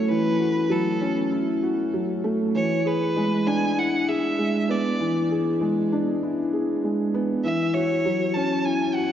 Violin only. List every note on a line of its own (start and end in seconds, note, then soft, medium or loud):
0.08 0.73 B4 loud
0.72 1.32 A4 medium
2.55 2.89 C#5 loud
2.88 3.49 B4 loud
3.47 3.80 G#5 loud
3.79 4.11 F#5 loud
4.09 4.72 E5 loud
4.70 5.31 D5 medium
7.44 7.75 E5 loud
7.74 8.35 C#5 loud
8.34 8.66 A5 loud
8.65 8.96 G#5 loud
8.95 9.12 F#5 loud